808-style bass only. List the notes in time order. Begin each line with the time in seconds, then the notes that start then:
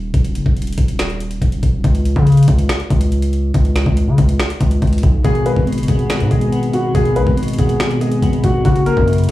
Already playing: D#1
0.14 D#1
0.35 F#1
0.46 D#1
0.78 D#1
1.42 D#1
1.63 D#1
1.84 C#2
2.16 C#3
2.48 C#2
2.90 C#2
3.54 C#2
3.86 C#2
4.08 C#3
4.18 C#2
4.61 C#2
4.82 C#2
5.03 B1
5.25 G#1
5.56 G#1
5.78 F#1
5.88 G#1
6.20 G#2
6.31 G#1
6.95 G#1
7.16 B1
7.27 G#1
7.59 G#1
8.22 G#1
8.44 G#1
8.65 F#1
8.97 F#2